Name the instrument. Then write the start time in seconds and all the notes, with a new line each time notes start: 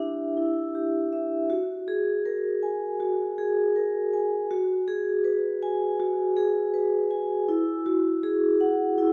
vibraphone
Already playing: E4 G4 E5
0.00 D4
0.37 E4
0.75 G4
1.13 E5
1.50 F#4
1.88 G#4
2.25 A#4
2.63 G#5
3.00 F#4
3.38 G#4
3.76 A#4
4.13 G#5
4.51 F#4
4.88 G#4
5.24 B4
5.63 G#5
6.00 F#4
6.37 G#4
6.74 B4
7.11 G#5
7.49 E4
7.86 F#4
8.23 G#4
8.61 F#5
8.98 E4